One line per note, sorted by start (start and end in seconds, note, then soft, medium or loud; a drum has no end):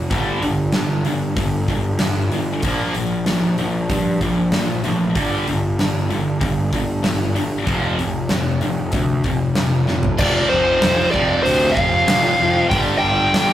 0.11 0.41 G1 medium
0.11 0.41 G2 medium
0.11 0.42 D3 medium
0.11 0.42 G3 medium
0.11 kick loud
0.11 open hi-hat medium
0.41 0.71 G1 medium
0.41 0.71 G2 medium
0.41 0.72 D3 medium
0.41 open hi-hat soft
0.72 1.03 G1 medium
0.72 1.03 G2 medium
0.72 1.03 D3 medium
0.72 snare medium
0.72 open hi-hat medium
1.05 1.35 G1 medium
1.05 1.34 G2 medium
1.05 1.35 D3 medium
1.05 open hi-hat soft
1.36 1.66 G1 medium
1.36 1.66 G2 medium
1.36 1.66 D3 medium
1.36 kick loud
1.36 open hi-hat medium
1.68 1.98 G1 medium
1.68 1.98 G2 medium
1.68 1.98 D3 medium
1.68 kick medium
1.68 open hi-hat soft
1.99 2.30 G1 medium
1.99 2.29 G2 medium
1.99 2.29 D3 medium
1.99 snare loud
1.99 open hi-hat medium
2.32 2.61 G1 medium
2.32 2.61 G2 medium
2.32 2.61 D3 medium
2.32 open hi-hat soft
2.62 2.92 A#1 medium
2.62 2.94 A#2 medium
2.62 2.94 F3 medium
2.62 2.94 A#3 loud
2.62 kick loud
2.62 open hi-hat medium
2.94 3.24 A#1 medium
2.94 3.24 A#2 medium
2.94 3.24 F3 medium
2.94 open hi-hat soft
3.26 3.55 A#1 medium
3.26 3.55 A#2 medium
3.26 3.55 F3 medium
3.26 snare medium
3.26 open hi-hat medium
3.58 3.87 A#1 medium
3.58 3.87 A#2 medium
3.58 3.87 F3 medium
3.58 open hi-hat soft
3.89 4.19 G2 medium
3.89 4.18 A#2 medium
3.89 4.18 F3 medium
3.89 kick loud
3.89 open hi-hat medium
4.21 4.50 A#1 medium
4.21 4.49 A#2 medium
4.21 4.49 F3 medium
4.21 kick medium
4.21 open hi-hat medium
4.52 4.82 A#1 medium
4.52 4.81 A#2 medium
4.52 4.81 F3 medium
4.52 snare loud
4.52 open hi-hat medium
4.83 5.13 A1 medium
4.83 5.13 A#2 medium
4.83 5.13 F3 medium
4.83 open hi-hat medium
5.15 5.45 G1 medium
5.15 5.45 G2 medium
5.15 5.46 D3 medium
5.15 5.46 G3 medium
5.15 kick loud
5.15 open hi-hat medium
5.48 5.77 G1 medium
5.48 5.76 G2 medium
5.48 5.76 D3 medium
5.48 open hi-hat soft
5.79 6.08 G1 medium
5.79 6.07 G2 medium
5.79 6.08 D3 medium
5.79 snare medium
5.79 open hi-hat medium
6.11 6.39 G1 loud
6.11 6.39 G2 medium
6.11 6.39 D3 medium
6.11 open hi-hat soft
6.41 6.70 G1 medium
6.41 6.70 G2 medium
6.41 6.70 D3 medium
6.41 kick loud
6.41 open hi-hat medium
6.73 7.02 G1 medium
6.73 7.01 G2 medium
6.73 7.02 D3 medium
6.73 kick medium
6.73 open hi-hat soft
7.04 7.34 G1 medium
7.04 7.32 G2 medium
7.04 7.33 D3 medium
7.04 snare loud
7.04 open hi-hat medium
7.36 7.66 G1 medium
7.36 7.64 G2 medium
7.36 7.64 D3 medium
7.36 open hi-hat soft
7.66 7.96 F1 medium
7.66 7.96 F2 medium
7.66 7.97 C3 loud
7.66 7.97 F3 loud
7.66 kick loud
7.66 open hi-hat medium
7.98 8.28 F1 medium
7.98 8.27 F2 medium
7.98 8.27 C3 medium
7.98 open hi-hat soft
8.29 8.59 F1 medium
8.29 8.59 F2 medium
8.29 8.59 C3 medium
8.29 snare loud
8.29 open hi-hat medium
8.61 8.91 F1 medium
8.61 8.91 F2 medium
8.61 8.91 C3 medium
8.61 open hi-hat soft
8.92 9.22 D2 medium
8.92 9.22 F2 medium
8.92 9.22 C3 medium
8.92 kick loud
8.92 open hi-hat medium
9.24 9.54 F1 medium
9.24 9.54 F2 medium
9.24 9.54 C3 medium
9.24 kick medium
9.24 open hi-hat medium
9.55 9.86 F1 medium
9.55 9.85 F2 medium
9.55 9.85 C3 medium
9.55 snare loud
9.55 open hi-hat medium
9.87 10.17 F1 medium
9.87 10.17 F2 medium
9.87 10.17 C3 medium
9.87 snare medium
10.03 floor tom medium
10.18 10.42 F1 medium
10.18 11.12 F2 medium
10.18 11.13 C3 loud
10.18 10.49 D5 loud
10.18 kick loud
10.18 crash loud
10.24 11.13 F3 loud
10.50 10.74 F1 medium
10.50 11.11 C5 medium
10.82 11.05 F1 medium
10.82 snare loud
10.82 open hi-hat medium
11.11 11.37 F1 medium
11.11 12.07 F3 medium
11.11 11.43 D5 medium
11.11 kick medium
11.16 12.07 F2 medium
11.16 12.08 C3 medium
11.43 11.68 D2 loud
11.43 11.77 C5 medium
11.43 open hi-hat medium
11.72 12.65 F5 loud
11.77 12.00 F1 medium
11.77 kick loud
12.08 12.31 F1 loud
12.08 12.70 F2 medium
12.08 12.71 C3 medium
12.08 12.71 F3 medium
12.08 snare loud
12.08 open hi-hat medium
12.40 12.63 F2 medium
12.70 12.94 G1 medium
12.70 13.53 G2 medium
12.70 13.53 D3 loud
12.70 12.79 G5 loud
12.70 kick loud
12.70 open hi-hat medium
12.75 13.53 G3 loud
12.99 13.25 G1 medium
12.99 13.53 G5 medium
13.34 13.53 G1 medium
13.34 snare loud
13.34 open hi-hat medium